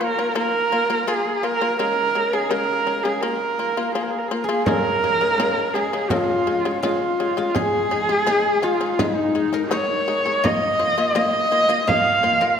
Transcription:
0.01 0.14 A#3 medium
0.01 0.14 F4 medium
0.01 0.36 A#4 medium
0.19 0.32 A#3 medium
0.19 0.32 F4 medium
0.35 0.64 A#3 medium
0.35 0.64 F4 medium
0.35 1.09 A#4 loud
0.72 0.86 A#3 medium
0.72 0.86 F4 medium
0.90 1.04 A#3 medium
0.90 1.04 F4 medium
1.07 1.36 A#3 medium
1.07 1.36 F4 medium
1.07 1.45 G#4 medium
1.43 1.58 A#3 medium
1.43 1.58 F4 medium
1.43 1.78 A#4 medium
1.61 1.76 A#3 medium
1.61 1.76 F4 medium
1.79 2.08 C#3 medium
1.79 2.08 G#3 medium
1.79 2.34 A#4 loud
2.15 2.30 C#3 medium
2.15 2.30 G#3 medium
2.33 2.48 C#3 medium
2.33 2.48 G#3 medium
2.33 2.51 G#4 medium
2.50 2.80 C#3 medium
2.50 2.80 G#3 medium
2.50 3.05 A#4 medium
2.87 3.01 C#3 medium
2.87 3.01 G#3 medium
3.03 3.19 C#3 medium
3.03 3.20 G#3 medium
3.03 3.23 G#4 medium
3.21 3.52 A#3 medium
3.21 3.52 F4 medium
3.21 3.93 A#4 medium
3.59 3.74 A#3 medium
3.59 3.74 F4 medium
3.77 3.92 A#3 medium
3.77 3.91 F4 medium
3.94 4.24 A#3 medium
3.94 4.24 F4 medium
3.94 4.03 G#4 medium
4.02 4.11 A#4 medium
4.10 4.20 G#4 medium
4.18 4.29 A#4 medium
4.28 4.46 A#3 medium
4.28 4.45 F4 medium
4.28 4.35 G#4 medium
4.33 4.45 A#4 medium
4.44 6.72 G#4 medium
4.44 4.66 G#4 medium
4.49 4.63 A#3 medium
4.49 4.63 F4 medium
4.66 4.96 C#3 medium
4.66 4.96 G#3 medium
4.66 6.78 A#4 medium
4.66 5.75 A#4 loud
4.66 frame drum medium
5.03 5.18 C#3 medium
5.03 5.18 G#3 medium
5.03 frame drum soft
5.20 5.36 C#3 medium
5.20 5.36 G#3 medium
5.20 frame drum soft
5.38 5.68 C#3 medium
5.38 5.68 G#3 medium
5.38 frame drum medium
5.73 5.90 C#3 medium
5.73 5.90 G#3 medium
5.73 6.11 G#4 medium
5.93 6.08 C#3 medium
5.93 6.08 G#3 medium
6.09 6.40 C#3 medium
6.09 6.40 G#3 medium
6.09 6.82 F4 medium
6.09 frame drum medium
6.47 6.62 C#3 medium
6.47 6.61 G#3 medium
6.65 6.80 C#3 medium
6.65 6.80 G#3 medium
6.82 7.12 C#3 medium
6.82 7.12 G#3 medium
6.82 7.57 F4 medium
6.82 7.37 F4 medium
6.82 frame drum medium
7.20 7.34 C#3 medium
7.20 7.34 G#3 medium
7.37 7.52 C#3 medium
7.37 7.51 G#3 medium
7.37 8.63 F4 medium
7.37 frame drum soft
7.55 7.84 G#3 medium
7.55 7.84 D#4 medium
7.55 8.65 G#4 loud
7.55 8.27 G#4 medium
7.55 frame drum medium
7.91 8.06 G#3 medium
7.91 8.06 D#4 medium
8.09 8.24 G#3 medium
8.09 8.23 D#4 medium
8.09 frame drum soft
8.27 8.56 G#3 loud
8.27 8.56 D#4 medium
8.27 10.55 G#4 medium
8.27 frame drum medium
8.62 8.77 G#3 medium
8.62 8.77 D#4 medium
8.62 11.15 F4 medium
8.62 9.02 F4 medium
8.81 8.95 G#3 medium
8.81 8.95 D#4 medium
8.99 9.28 G#3 medium
8.99 11.70 D#4 medium
8.99 9.28 D#4 medium
8.99 9.73 D#4 medium
8.99 frame drum medium
9.35 9.50 G#3 medium
9.35 9.50 D#4 medium
9.53 9.68 G#3 medium
9.53 9.68 D#4 medium
9.53 11.66 A#4 medium
9.71 10.00 G#3 medium
9.71 10.00 D#4 loud
9.71 10.46 C#5 medium
9.71 11.64 C#5 medium
9.71 frame drum medium
10.08 10.22 G#3 medium
10.08 10.22 D#4 medium
10.26 10.40 G#3 medium
10.26 10.40 D#4 medium
10.26 frame drum soft
10.44 10.72 A#3 medium
10.44 10.73 F4 medium
10.44 11.15 D#5 medium
10.44 11.16 D#5 loud
10.44 frame drum medium
10.79 10.94 A#3 medium
10.79 10.94 F4 medium
10.79 frame drum soft
10.98 11.12 A#3 medium
10.98 11.12 F4 medium
10.98 frame drum soft
11.15 11.44 A#3 medium
11.15 11.44 F4 medium
11.15 11.69 D#5 medium
11.15 11.89 D#5 loud
11.15 frame drum medium
11.52 11.66 A#3 medium
11.52 11.66 F4 medium
11.69 11.84 A#3 medium
11.69 11.84 F4 medium
11.69 12.60 D#5 medium
11.87 12.17 A#3 medium
11.87 12.16 F4 medium
11.87 12.60 F5 medium
11.87 12.60 F5 loud
11.87 frame drum medium
12.23 12.38 A#3 medium
12.23 12.38 F4 medium
12.41 12.56 A#3 medium
12.41 12.56 F4 medium
12.41 12.60 A#4 medium

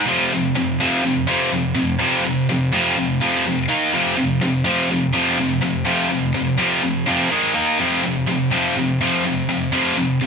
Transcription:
0.07 0.30 F2 medium
0.07 0.31 C3 medium
0.07 0.31 F3 medium
0.33 0.54 F2 medium
0.33 0.54 C3 medium
0.56 0.78 F2 medium
0.56 0.78 C3 medium
0.80 1.02 F2 medium
0.80 1.03 C3 medium
0.80 1.04 F3 medium
1.03 1.26 F2 medium
1.03 1.26 C3 medium
1.27 1.50 F2 medium
1.27 1.51 C3 medium
1.27 1.51 F3 medium
1.52 1.74 F2 medium
1.52 1.74 C3 medium
1.75 1.97 F2 medium
1.75 1.98 C3 medium
1.99 2.23 F2 medium
1.99 2.23 C3 medium
1.99 2.23 F3 medium
2.24 2.46 F2 medium
2.24 2.46 C3 medium
2.49 2.71 F2 medium
2.49 2.71 C3 medium
2.73 2.95 F2 medium
2.73 2.96 C3 medium
2.73 2.97 F3 loud
2.97 3.19 F2 medium
2.97 3.19 C3 medium
3.21 3.44 F2 medium
3.21 3.44 C3 loud
3.21 3.44 F3 medium
3.45 3.67 F2 medium
3.45 3.67 C3 medium
3.68 3.91 D#3 medium
3.68 3.92 A#3 medium
3.68 3.92 D#4 medium
3.93 4.16 F2 medium
3.93 4.16 C3 medium
3.93 4.16 F3 medium
4.17 4.39 F2 medium
4.17 4.39 C3 medium
4.41 4.63 F2 medium
4.41 4.63 C3 medium
4.64 4.88 F2 medium
4.64 4.88 C3 medium
4.64 4.88 F3 medium
4.90 5.12 F2 medium
4.90 5.12 C3 medium
5.13 5.36 F2 medium
5.13 5.37 C3 medium
5.13 5.37 F3 medium
5.39 5.60 F2 medium
5.39 5.60 C3 medium
5.61 5.83 F2 medium
5.61 5.84 C3 medium
5.85 6.08 F2 medium
5.85 6.08 C3 medium
5.85 6.09 F3 medium
6.09 6.31 F2 medium
6.09 6.32 C3 medium
6.34 6.56 F2 medium
6.34 6.56 C3 medium
6.58 6.81 F2 medium
6.58 6.81 C3 medium
6.58 6.82 F3 medium
6.83 7.04 F2 medium
6.83 7.04 C3 medium
7.06 7.29 F2 medium
7.06 7.30 C3 medium
7.06 7.30 F3 medium
7.31 7.53 G#2 medium
7.31 7.53 D#3 medium
7.31 7.54 G#3 medium
7.54 7.77 D#3 medium
7.54 7.78 A#3 medium
7.54 7.78 D#4 medium
7.78 8.01 F2 medium
7.78 8.02 C3 medium
7.78 8.02 F3 medium
8.04 8.25 F2 medium
8.04 8.25 C3 medium
8.28 8.49 F2 medium
8.28 8.49 C3 medium
8.51 8.74 F2 medium
8.51 8.75 C3 medium
8.51 8.75 F3 medium
8.76 8.98 F2 medium
8.76 8.98 C3 medium
9.01 9.23 F2 medium
9.01 9.23 C3 medium
9.01 9.24 F3 loud
9.25 9.46 F2 medium
9.25 9.47 C3 medium
9.49 9.70 F2 medium
9.49 9.70 C3 medium
9.72 9.95 F2 medium
9.72 9.95 C3 medium
9.72 9.96 F3 medium
9.97 10.18 F2 medium
9.97 10.19 C3 medium
10.21 10.27 F2 medium
10.21 10.27 C3 medium

